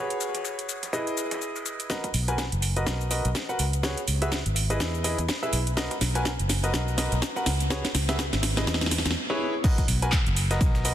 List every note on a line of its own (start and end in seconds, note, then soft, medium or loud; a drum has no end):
0.00 0.91 F#4 medium
0.00 0.91 G#4 medium
0.00 0.91 B4 medium
0.00 0.91 C#5 medium
0.10 closed hi-hat soft
0.10 shaker soft
0.20 ride medium
0.20 shaker medium
0.35 snare soft
0.35 closed hi-hat medium
0.35 shaker soft
0.45 ride medium
0.45 shaker soft
0.59 closed hi-hat soft
0.59 shaker soft
0.69 ride medium
0.69 shaker medium
0.83 snare soft
0.83 closed hi-hat medium
0.83 shaker soft
0.93 1.87 E4 medium
0.93 1.87 G#4 medium
0.93 1.87 B4 medium
0.93 1.87 D#5 medium
0.93 snare loud
0.93 ride medium
0.93 shaker soft
1.07 closed hi-hat soft
1.07 shaker soft
1.17 ride medium
1.17 shaker medium
1.31 snare loud
1.31 closed hi-hat medium
1.31 ride medium
1.31 shaker soft
1.42 shaker soft
1.56 ride medium
1.56 shaker soft
1.66 ride medium
1.66 shaker medium
1.80 closed hi-hat medium
1.80 shaker soft
1.90 2.06 F#4 medium
1.90 2.06 A#4 medium
1.90 2.06 B4 medium
1.90 2.06 D#5 medium
1.90 kick loud
1.90 snare soft
1.90 shaker soft
2.04 kick medium
2.04 closed hi-hat medium
2.04 shaker soft
2.14 2.49 B1 medium
2.14 open hi-hat loud
2.14 shaker medium
2.28 2.41 F#4 medium
2.28 2.41 A#4 medium
2.28 2.41 B4 medium
2.28 2.41 G#5 medium
2.28 closed hi-hat medium
2.28 shaker soft
2.38 kick loud
2.38 snare soft
2.38 shaker soft
2.52 2.84 F#1 medium
2.52 closed hi-hat soft
2.52 shaker soft
2.62 open hi-hat loud
2.62 shaker medium
2.76 3.08 F#4 medium
2.76 3.08 A#4 medium
2.76 3.08 B4 medium
2.76 3.08 D#5 medium
2.76 closed hi-hat medium
2.76 shaker soft
2.86 3.21 B1 medium
2.86 kick loud
2.86 snare medium
2.86 shaker soft
3.01 shaker soft
3.11 3.27 F#4 medium
3.11 3.27 A#4 medium
3.11 3.27 B4 medium
3.11 3.27 D#5 medium
3.11 open hi-hat loud
3.11 shaker medium
3.25 3.33 B1 medium
3.25 closed hi-hat medium
3.25 shaker soft
3.35 kick loud
3.35 snare medium
3.35 shaker soft
3.49 3.62 F#4 medium
3.49 3.62 A#4 medium
3.49 3.62 B4 medium
3.49 3.62 F#5 medium
3.49 shaker soft
3.59 3.94 C#2 medium
3.59 open hi-hat loud
3.59 shaker medium
3.73 closed hi-hat medium
3.73 shaker soft
3.83 3.99 F#4 medium
3.83 3.99 G#4 medium
3.83 3.99 B4 medium
3.83 3.99 C#5 medium
3.83 kick loud
3.83 snare medium
3.83 shaker soft
3.98 closed hi-hat soft
3.98 shaker soft
4.08 4.42 C#2 medium
4.08 open hi-hat loud
4.08 shaker medium
4.22 4.34 F#4 medium
4.22 4.34 G#4 medium
4.22 4.34 B4 medium
4.22 4.34 E5 medium
4.22 closed hi-hat medium
4.22 shaker soft
4.32 kick loud
4.32 snare medium
4.32 shaker soft
4.46 4.78 G#1 medium
4.46 closed hi-hat medium
4.46 shaker soft
4.56 open hi-hat loud
4.56 shaker medium
4.70 5.02 E4 medium
4.70 5.02 G#4 medium
4.70 5.02 B4 medium
4.70 5.02 D#5 medium
4.70 closed hi-hat medium
4.70 shaker soft
4.80 5.15 E2 medium
4.80 kick loud
4.80 snare medium
4.80 shaker soft
4.95 shaker soft
5.04 5.20 E4 medium
5.04 5.20 G#4 medium
5.04 5.20 B4 medium
5.04 5.20 D#5 medium
5.04 open hi-hat loud
5.04 shaker medium
5.19 5.27 E2 medium
5.19 kick medium
5.19 closed hi-hat medium
5.19 shaker soft
5.29 kick loud
5.29 snare medium
5.29 shaker soft
5.43 5.55 E4 medium
5.43 5.55 G#4 medium
5.43 5.55 B4 medium
5.43 5.55 E5 medium
5.43 shaker soft
5.53 5.87 B1 medium
5.53 open hi-hat loud
5.53 shaker medium
5.67 closed hi-hat medium
5.67 shaker soft
5.77 5.93 F#4 medium
5.77 5.93 A#4 medium
5.77 5.93 B4 medium
5.77 5.93 D#5 medium
5.77 kick loud
5.77 snare medium
5.77 shaker soft
5.91 kick medium
5.91 closed hi-hat soft
5.91 shaker soft
6.01 6.36 B1 medium
6.01 snare medium
6.01 open hi-hat loud
6.01 shaker medium
6.15 6.28 F#4 medium
6.15 6.28 A#4 medium
6.15 6.28 B4 medium
6.15 6.28 G#5 medium
6.15 closed hi-hat medium
6.15 shaker soft
6.25 kick loud
6.25 snare medium
6.25 shaker soft
6.39 6.71 F#1 loud
6.39 closed hi-hat soft
6.39 shaker soft
6.50 snare medium
6.50 open hi-hat loud
6.50 shaker medium
6.64 6.95 F#4 medium
6.64 6.95 A#4 medium
6.64 6.95 B4 medium
6.64 6.95 D#5 medium
6.64 closed hi-hat medium
6.64 shaker soft
6.74 7.08 B1 medium
6.74 kick loud
6.74 snare medium
6.74 shaker soft
6.88 shaker soft
6.98 7.14 F#4 medium
6.98 7.14 A#4 medium
6.98 7.14 B4 medium
6.98 7.14 D#5 medium
6.98 snare medium
6.98 open hi-hat loud
6.98 shaker medium
7.12 7.20 B1 loud
7.12 closed hi-hat medium
7.12 shaker soft
7.22 kick loud
7.22 snare medium
7.22 shaker soft
7.36 7.49 F#4 medium
7.36 7.49 A#4 medium
7.36 7.49 B4 medium
7.36 7.49 F#5 medium
7.36 shaker soft
7.46 7.81 C#2 medium
7.46 snare medium
7.46 open hi-hat loud
7.46 shaker medium
7.60 closed hi-hat medium
7.60 shaker soft
7.70 7.87 F#4 medium
7.70 7.87 G#4 medium
7.70 7.87 B4 medium
7.70 7.87 C#5 medium
7.70 kick loud
7.70 snare medium
7.70 shaker soft
7.85 snare medium
7.85 closed hi-hat soft
7.85 shaker soft
7.95 8.29 C#2 medium
7.95 snare medium
7.95 open hi-hat loud
7.95 shaker medium
8.09 8.22 F#4 medium
8.09 8.22 G#4 medium
8.09 8.22 B4 medium
8.09 8.22 E5 medium
8.09 snare medium
8.09 closed hi-hat medium
8.09 shaker soft
8.19 kick loud
8.19 snare loud
8.19 shaker soft
8.33 8.65 G#1 medium
8.33 snare medium
8.33 closed hi-hat soft
8.33 shaker soft
8.43 snare loud
8.43 open hi-hat loud
8.43 shaker medium
8.57 8.89 E4 medium
8.57 8.89 G#4 medium
8.57 8.89 B4 medium
8.57 8.89 D#5 medium
8.57 snare medium
8.57 closed hi-hat medium
8.57 shaker soft
8.67 9.02 E2 medium
8.67 kick loud
8.67 snare loud
8.67 shaker soft
8.74 snare medium
8.81 snare medium
8.81 closed hi-hat soft
8.81 shaker soft
8.86 snare medium
8.91 snare loud
8.91 open hi-hat loud
8.91 shaker medium
8.98 snare medium
9.06 9.14 E2 loud
9.06 kick medium
9.06 snare medium
9.06 closed hi-hat medium
9.06 shaker soft
9.11 snare medium
9.30 9.53 E4 loud
9.30 9.53 G#4 medium
9.30 9.53 B4 medium
9.30 9.53 C#5 loud
9.64 9.80 F#4 medium
9.64 9.80 A#4 medium
9.64 9.80 B4 medium
9.64 9.80 D#5 medium
9.64 kick loud
9.64 ride medium
9.64 crash loud
9.64 shaker soft
9.78 kick medium
9.78 closed hi-hat medium
9.78 shaker soft
9.88 10.23 B1 loud
9.88 open hi-hat loud
9.88 ride medium
9.88 shaker medium
10.02 10.15 F#4 medium
10.02 10.15 A#4 medium
10.02 10.15 B4 medium
10.02 10.15 G#5 medium
10.02 closed hi-hat medium
10.02 shaker soft
10.12 kick loud
10.12 snare loud
10.12 clap loud
10.12 ride medium
10.12 shaker soft
10.27 10.58 F#1 medium
10.27 closed hi-hat medium
10.27 shaker soft
10.37 open hi-hat loud
10.37 ride medium
10.37 shaker medium
10.51 10.83 F#4 medium
10.51 10.83 A#4 medium
10.51 10.83 B4 medium
10.51 10.83 D#5 medium
10.51 snare medium
10.51 closed hi-hat medium
10.51 shaker soft
10.61 10.94 B1 medium
10.61 kick loud
10.61 ride medium
10.61 shaker soft
10.75 snare soft
10.75 shaker soft
10.85 10.94 F#4 medium
10.85 10.94 A#4 medium
10.85 10.94 B4 medium
10.85 10.94 D#5 medium
10.85 open hi-hat loud
10.85 ride medium
10.85 shaker medium